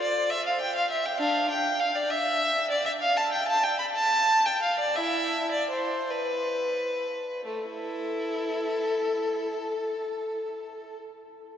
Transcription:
0.01 D5
0.30 E5
0.46 F5
0.61 G5
0.75 F5
0.90 E5
1.05 G5
1.19 D4 F5
1.50 G5
1.80 F5
1.96 D5
2.10 E5
2.70 D5
2.85 E5
3.01 F5
3.17 A5
3.32 G5
3.48 A5
3.63 G5
3.79 B5
3.95 A5
4.46 G5
4.62 F5
4.79 D5
4.96 E4 E5
5.51 D5
5.70 C5
6.11 B4
7.45 A3
7.69 E4 A4

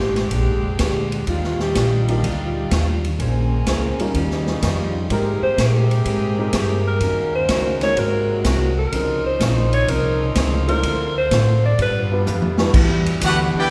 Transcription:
Already playing: G#1 A#2 D3 G#3 C4 D4 G4
0.00 snare
0.15 snare, ride
0.31 A#1 A#2 G#3 D4 G4, kick, ride
0.47 G#1
0.64 F1
0.79 D2 A#2 G#3 D4, kick, snare, hi-hat pedal, ride
0.83 G4
1.12 ride
1.26 D#2 D#3 G3 D4 D#4 F4, kick, ride
1.31 F4
1.44 snare
1.60 G4, snare
1.75 A#1 D#3 G3 D4 F4, kick, snare, hi-hat pedal, ride
2.08 A#3 D4 D#4 F4 G4, ride
2.22 D2 D#3 G3 D4 F4, kick, ride
2.70 D#2 D#3 G3 D4 F4, kick, snare, hi-hat pedal, ride
3.04 ride
3.18 A#1 G#3 A#3 C4 C#4 G#4 C5, kick, ride
3.66 C#2 A#3 C#4 G#4 C5, kick, snare, hi-hat pedal, ride
3.99 G3 C#4 D#4 F4 A#4, muted upright bass stroke, ride
4.14 D#2 C#3 D#3 F3 G3 C#4 D#4 F4, kick, ride
4.31 snare
4.47 snare
4.62 F2 D#3 G3 C#4 F4, kick, snare, hi-hat pedal, ride
5.09 G#2 C3 G#3 A#3 C4 D#4 G4 G#4 A#4, kick, ride
5.42 C5, muted upright bass stroke
5.57 A#2 G#3 C4 G4 A#4, kick, snare, hi-hat pedal, ride
5.91 ride
6.04 G#2 G#3 C4 G4 A#4, kick, ride
6.38 G#3 C4 D#4 G4 A#4
6.53 G2 G#3 C4 G4 A#4, kick, snare, hi-hat pedal, ride
6.87 A#4
7.00 D#2 C#3 D#3 F#3 C#4 D#4 F#4, kick, ride
7.04 A#4
7.35 C5
7.48 C#2 D#3 C#4 F#4 A#4, kick, snare, hi-hat pedal, ride
7.81 G#3 C4 D#4 F#4 A#4 C#5, snare, ride
7.95 G#1 C3 G#3 C4 F#4 A#4, kick, ride
7.99 F#4 A#4
8.44 C2 G#3 C4 F#4 A#4, kick, snare, hi-hat pedal, ride
8.78 A#4
8.92 C#2 C#3 F3 C4 C#4 D#4, kick, ride
9.24 C5, muted upright bass stroke
9.40 A#1 C#3 F3 C4 D#4, kick, snare, hi-hat pedal, ride
9.73 C#5, ride
9.87 C2 C#3 F3 C4 D#4 A#4, kick, ride
10.35 C#2 C#3 F3 C4 D#4, kick, snare, hi-hat pedal, ride
10.68 A3 D4 E4 F4 A#4 C5, ride
10.83 D2 D3 A3 C4 F4 A4, kick, ride
11.18 C5
11.31 A2 D3 C4 F4 A4, kick, snare, hi-hat pedal, ride
11.66 D5
11.77 G2 G3 B3 D4 F4, kick, ride
11.82 B4
12.12 B3 D4 F4 G4 B4
12.26 F2 G3 D4 F4 B4, hi-hat pedal, mid tom
12.42 mid tom
12.58 G3 D4 E4 F#4 B4, snare
12.73 E2 D3 E3 G3 B3 D4 E4, kick, crash
12.78 G4
13.06 ride
13.21 D2 E3 B3 D4 F#4 G4 F#5, kick, hi-hat pedal, ride
13.25 B4
13.54 B3 D4 G4 G5, muted upright bass stroke
13.58 E4 B4 D5

